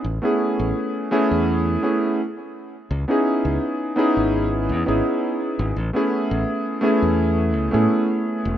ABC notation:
X:1
M:4/4
L:1/16
Q:1/4=84
K:C#m
V:1 name="Electric grand piano"
z [A,B,CEG]4- [A,B,CEG] [A,B,CEG]4 [A,B,CEG]2 z4 | z [B,CDEG]4- [B,CDEG] [B,CDEG]4- [B,CDEG] [B,CDEG]4- [B,CDEG] | z [A,B,CEG]4- [A,B,CEG] [A,B,CEG]4- [A,B,CEG] [A,B,CEG]4- [A,B,CEG] |]
V:2 name="Fingered electric bass" clef=bass
A,,, z2 A,,, z3 E,,3 z6 | C,, z2 C,, z3 G,,,3 E,, G,,, z3 G,,, | A,,, z2 A,,, z3 E,,3 C,, A,, z3 E,,, |]